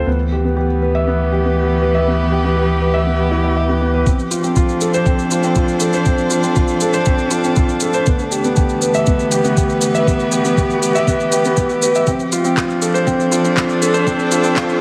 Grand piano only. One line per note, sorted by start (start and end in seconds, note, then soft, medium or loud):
0.07 0.19 B3 medium
0.32 0.44 G4 medium
0.45 0.56 B3 medium
0.57 0.64 G4 medium
0.82 0.89 B4 medium
0.95 1.07 E5 medium
1.07 1.19 B3 medium
1.33 1.44 G4 medium
1.45 1.57 B3 medium
1.57 1.64 G4 medium
1.82 1.89 B4 medium
1.95 2.06 E5 medium
2.07 2.19 B3 medium
2.32 2.44 G4 medium
2.44 2.56 B3 medium
2.57 2.64 G4 medium
2.81 2.89 B4 medium
2.94 3.06 E5 medium
3.07 3.19 B3 medium
3.31 3.39 E4 medium
3.44 3.51 E5 medium
3.57 3.69 E5 medium
3.69 3.80 B3 medium
3.81 3.89 B3 medium
3.94 4.06 B4 medium
4.06 4.19 C4 medium
4.31 4.43 F4 medium
4.44 4.56 C4 medium
4.57 4.64 F4 medium
4.82 4.89 A4 medium
4.94 5.06 C5 medium
5.06 5.19 C4 medium
5.32 5.44 F4 medium
5.44 5.56 C4 medium
5.57 5.64 F4 medium
5.81 5.89 A4 medium
5.94 6.06 C5 medium
6.06 6.18 C4 medium
6.31 6.43 F4 medium
6.44 6.56 C4 medium
6.56 6.64 F4 medium
6.82 6.89 A4 medium
6.94 7.06 C5 medium
7.06 7.19 C4 medium
7.31 7.43 F4 medium
7.44 7.56 C4 medium
7.57 7.64 F4 medium
7.82 7.89 A4 medium
7.94 8.06 C5 medium
8.07 8.19 B3 medium
8.32 8.44 G4 medium
8.45 8.56 B3 medium
8.57 8.64 G4 medium
8.82 8.89 B4 medium
8.95 9.06 E5 medium
9.07 9.19 B3 medium
9.32 9.44 G4 medium
9.44 9.56 B3 medium
9.57 9.64 G4 medium
9.82 9.89 B4 medium
9.95 10.06 E5 medium
10.07 10.19 B3 medium
10.32 10.44 G4 medium
10.45 10.57 B3 medium
10.58 10.65 G4 medium
10.82 10.89 B4 medium
10.95 11.07 E5 medium
11.08 11.19 B3 medium
11.33 11.44 G4 medium
11.45 11.57 B3 medium
11.58 11.64 G4 medium
11.83 11.89 B4 medium
11.96 12.07 E5 medium
12.08 12.19 C4 medium
12.32 12.44 F4 medium
12.45 12.56 C4 medium
12.57 12.64 F4 medium
12.82 12.89 A4 medium
12.94 13.06 C5 medium
13.07 13.19 C4 medium
13.32 13.44 F4 medium
13.44 13.56 C4 medium
13.57 13.64 F4 medium
13.82 13.89 A4 medium
13.94 14.06 C5 medium
14.07 14.19 C4 medium
14.32 14.44 F4 medium
14.44 14.56 C4 medium
14.57 14.64 F4 medium